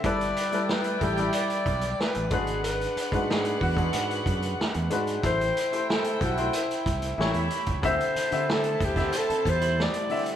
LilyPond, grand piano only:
\new Staff \with { instrumentName = "Grand piano" } { \time 4/4 \key a \dorian \tempo 4 = 92 <g e' a' b'>8. <g e' a' b'>8. <g e' a' d''>16 <g e' a' d''>4.~ <g e' a' d''>16 <gis d' fis' b'>8~ | <gis d' fis' b'>8 r16 <gis d' fis' b'>4 <gis d' fis' gis'>4. r16 <gis d' fis' b'>8 | <a e' g' c''>8. <a e' g' c''>8. <a e' g' a'>16 <a e' g' c''>4~ <a e' g' c''>16 <a e' g' cis''>4 | <d c' g' e''>8. <d c' g' e''>4 <d c' g' e''>4. r16 <d c' g' e''>8 | }